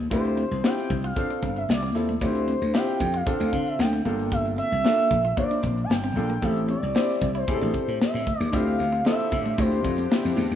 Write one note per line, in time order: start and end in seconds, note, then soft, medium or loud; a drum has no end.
0.10 0.43 D2 loud
0.10 0.39 C4 medium
0.10 0.21 D4 medium
0.10 0.39 E4 medium
0.10 0.39 F4 medium
0.10 0.40 G4 medium
0.10 0.67 C5 loud
0.10 kick loud
0.10 closed hi-hat medium
0.10 shaker medium
0.25 muted clean electric guitar stroke soft
0.25 closed hi-hat medium
0.25 shaker soft
0.37 0.47 C4 medium
0.37 closed hi-hat medium
0.37 shaker medium
0.51 0.61 C2 medium
0.51 closed hi-hat soft
0.51 shaker medium
0.63 0.92 C4 medium
0.63 0.74 D4 medium
0.63 0.92 E4 medium
0.63 0.92 F4 medium
0.63 0.92 G4 medium
0.63 1.05 G5 loud
0.63 snare loud
0.63 shaker medium
0.78 closed hi-hat soft
0.78 shaker soft
0.90 1.11 C2 medium
0.90 muted clean electric guitar stroke soft
0.90 kick medium
0.90 closed hi-hat medium
1.04 1.13 F4 medium
1.04 1.54 F5 loud
1.04 closed hi-hat soft
1.04 shaker soft
1.16 1.59 C4 medium
1.16 1.59 D4 medium
1.16 1.60 F4 medium
1.16 1.60 A4 medium
1.16 muted clean electric guitar stroke soft
1.16 kick loud
1.16 closed hi-hat loud
1.16 shaker medium
1.30 1.39 D4 medium
1.30 closed hi-hat medium
1.30 shaker soft
1.42 1.64 G1 medium
1.42 1.53 C4 medium
1.42 kick medium
1.42 closed hi-hat medium
1.56 1.63 E5 medium
1.56 closed hi-hat medium
1.56 shaker medium
1.69 1.90 C2 medium
1.69 2.07 D5 medium
1.69 snare loud
1.69 shaker medium
1.83 1.92 C4 medium
1.83 closed hi-hat medium
1.83 shaker soft
1.95 2.16 D#2 medium
1.95 2.10 C4 medium
1.95 2.10 E4 medium
1.95 2.10 F4 medium
1.95 2.10 A4 medium
1.95 muted clean electric guitar stroke soft
1.95 closed hi-hat medium
2.08 2.18 A3 medium
2.08 closed hi-hat medium
2.08 shaker medium
2.21 2.54 D2 loud
2.21 2.50 C4 medium
2.21 2.31 D4 medium
2.21 2.50 E4 medium
2.21 2.50 F4 medium
2.21 2.50 G4 medium
2.21 2.77 C5 loud
2.21 kick loud
2.21 closed hi-hat loud
2.21 shaker medium
2.35 muted clean electric guitar stroke soft
2.35 closed hi-hat medium
2.35 shaker soft
2.48 2.58 C4 medium
2.48 closed hi-hat medium
2.48 shaker soft
2.62 2.72 D2 medium
2.62 closed hi-hat soft
2.62 shaker soft
2.73 3.02 C4 medium
2.73 2.84 D4 medium
2.73 3.02 E4 medium
2.73 3.02 F4 medium
2.73 3.03 G4 loud
2.73 3.17 G5 loud
2.73 snare loud
2.73 shaker medium
2.87 closed hi-hat soft
2.87 shaker soft
3.00 3.21 F2 medium
3.00 muted clean electric guitar stroke soft
3.00 kick loud
3.00 closed hi-hat medium
3.14 3.23 F4 medium
3.14 3.70 F5 loud
3.14 closed hi-hat soft
3.14 shaker soft
3.26 3.83 C4 medium
3.26 3.83 D4 medium
3.26 3.84 F4 medium
3.26 3.84 A4 medium
3.26 muted clean electric guitar stroke soft
3.26 kick loud
3.26 closed hi-hat loud
3.26 shaker medium
3.40 3.50 D2 medium
3.40 3.49 D4 medium
3.40 closed hi-hat medium
3.40 shaker soft
3.53 3.74 D3 loud
3.53 3.63 C4 medium
3.53 kick medium
3.53 closed hi-hat medium
3.66 3.81 E5 medium
3.66 closed hi-hat medium
3.66 shaker medium
3.79 4.00 D2 medium
3.79 4.32 G5 loud
3.79 muted clean electric guitar stroke soft
3.79 snare loud
3.79 shaker medium
3.93 4.02 C4 medium
3.93 closed hi-hat soft
3.93 shaker soft
4.05 4.59 G1 medium
4.05 4.69 A#3 medium
4.05 4.16 A#3 medium
4.05 4.69 D4 medium
4.05 4.69 F4 medium
4.05 4.70 A4 medium
4.05 closed hi-hat medium
4.18 closed hi-hat medium
4.18 shaker medium
4.32 4.42 G4 medium
4.32 4.44 E5 loud
4.32 kick loud
4.32 closed hi-hat medium
4.32 shaker medium
4.46 muted clean electric guitar stroke soft
4.46 closed hi-hat medium
4.46 shaker soft
4.58 4.68 C4 medium
4.58 5.34 E5 loud
4.58 closed hi-hat medium
4.58 shaker soft
4.72 4.82 C2 medium
4.72 closed hi-hat soft
4.72 shaker medium
4.84 5.13 A#3 medium
4.84 5.13 D4 medium
4.84 4.95 D4 medium
4.84 5.13 F4 medium
4.84 5.13 A4 medium
4.84 snare loud
4.84 shaker medium
4.98 closed hi-hat soft
4.98 shaker soft
5.11 5.32 A#1 medium
5.11 muted clean electric guitar stroke soft
5.11 kick medium
5.11 closed hi-hat medium
5.25 5.34 F4 medium
5.25 closed hi-hat soft
5.25 shaker soft
5.37 5.80 A#3 medium
5.37 5.80 D4 medium
5.37 5.80 F4 medium
5.37 5.81 C5 medium
5.37 5.81 D5 loud
5.37 muted clean electric guitar stroke soft
5.37 kick loud
5.37 closed hi-hat loud
5.37 shaker medium
5.51 5.60 D4 medium
5.51 closed hi-hat medium
5.51 shaker medium
5.63 5.85 A#1 medium
5.63 5.73 C4 medium
5.63 kick medium
5.63 closed hi-hat medium
5.77 closed hi-hat medium
5.77 shaker medium
5.84 5.92 A5 medium
5.90 6.11 G1 medium
5.90 6.45 G5 loud
5.90 snare loud
5.90 shaker medium
6.04 6.13 C4 medium
6.04 closed hi-hat soft
6.04 shaker soft
6.16 6.37 A#1 medium
6.16 6.31 A#3 medium
6.16 6.31 D4 medium
6.16 6.31 F4 medium
6.16 6.31 A4 medium
6.16 muted clean electric guitar stroke soft
6.16 closed hi-hat medium
6.28 6.39 A#3 medium
6.28 closed hi-hat soft
6.28 shaker medium
6.42 6.75 A1 loud
6.42 6.53 A3 medium
6.42 6.71 C4 medium
6.42 6.71 E4 medium
6.42 6.71 G4 medium
6.42 6.71 A4 medium
6.42 6.69 E5 loud
6.42 kick loud
6.42 closed hi-hat medium
6.42 shaker medium
6.56 muted clean electric guitar stroke soft
6.56 closed hi-hat medium
6.56 shaker soft
6.69 6.79 C4 medium
6.69 7.32 D5 loud
6.69 closed hi-hat medium
6.69 shaker soft
6.83 6.93 C2 loud
6.83 closed hi-hat soft
6.83 shaker medium
6.95 7.23 C4 medium
6.95 7.05 D4 medium
6.95 7.23 E4 medium
6.95 7.24 G4 medium
6.95 7.24 C5 medium
6.95 snare loud
6.95 shaker medium
7.09 closed hi-hat soft
7.09 shaker soft
7.21 7.43 C2 medium
7.21 muted clean electric guitar stroke soft
7.21 kick medium
7.21 closed hi-hat medium
7.35 7.44 E4 medium
7.35 7.97 C5 medium
7.35 closed hi-hat soft
7.35 shaker medium
7.47 7.59 A2 loud
7.47 8.05 C4 medium
7.47 8.05 E4 medium
7.47 8.05 G4 medium
7.47 7.55 G#4 medium
7.47 muted clean electric guitar stroke soft
7.47 kick loud
7.47 closed hi-hat loud
7.47 shaker medium
7.54 8.08 A4 medium
7.62 7.72 A1 medium
7.62 7.71 D4 medium
7.62 closed hi-hat soft
7.62 shaker soft
7.74 7.84 C4 medium
7.74 kick medium
7.74 closed hi-hat medium
7.87 7.98 A2 medium
7.87 closed hi-hat medium
7.87 shaker medium
8.00 8.40 E5 loud
8.00 muted clean electric guitar stroke soft
8.00 snare loud
8.00 shaker medium
8.14 8.24 A2 medium
8.14 8.23 C4 medium
8.14 closed hi-hat medium
8.14 shaker soft
8.27 8.37 A3 medium
8.27 kick loud
8.27 closed hi-hat medium
8.39 8.50 D#2 medium
8.39 8.56 D5 loud
8.39 closed hi-hat medium
8.39 shaker soft
8.53 8.74 D2 loud
8.53 10.55 D3 medium
8.53 8.81 C4 medium
8.53 10.55 C4 medium
8.53 8.63 D4 medium
8.53 10.55 D4 medium
8.53 8.81 E4 medium
8.53 8.82 F4 medium
8.53 10.55 F4 medium
8.53 10.55 G4 medium
8.53 8.82 G4 medium
8.53 9.05 F5 loud
8.53 kick loud
8.53 closed hi-hat loud
8.53 shaker medium
8.66 closed hi-hat medium
8.66 shaker soft
8.79 9.00 D2 medium
8.79 muted clean electric guitar stroke soft
8.79 closed hi-hat medium
8.79 shaker medium
8.92 9.02 C4 medium
8.92 closed hi-hat soft
8.92 shaker medium
9.05 9.15 C4 medium
9.05 9.34 C4 medium
9.05 9.34 E4 medium
9.05 9.34 F4 medium
9.05 9.35 A4 medium
9.05 9.61 E5 loud
9.05 snare loud
9.05 shaker medium
9.19 muted clean electric guitar stroke soft
9.19 closed hi-hat soft
9.19 shaker medium
9.32 9.53 A2 medium
9.32 kick loud
9.32 closed hi-hat medium
9.46 9.55 A3 medium
9.46 closed hi-hat soft
9.46 shaker soft
9.58 9.79 D2 medium
9.58 9.68 A3 medium
9.58 9.87 C4 medium
9.58 9.87 E4 medium
9.58 9.87 F4 medium
9.58 9.87 G4 medium
9.58 10.38 C5 loud
9.58 kick loud
9.58 closed hi-hat loud
9.58 shaker medium
9.72 muted clean electric guitar stroke soft
9.72 closed hi-hat medium
9.72 shaker medium
9.84 10.06 F2 medium
9.84 kick medium
9.84 closed hi-hat medium
9.84 shaker medium
9.97 10.07 C4 medium
9.97 closed hi-hat medium
9.97 shaker medium
10.11 10.39 C4 medium
10.11 10.39 E4 medium
10.11 10.40 F4 medium
10.11 10.40 G4 medium
10.11 snare loud
10.11 shaker medium
10.25 10.35 F2 medium
10.25 closed hi-hat medium
10.25 shaker soft
10.37 10.48 E2 loud
10.37 10.47 A3 medium
10.37 closed hi-hat medium
10.37 shaker soft
10.50 10.55 D#2 medium
10.50 closed hi-hat medium
10.50 shaker medium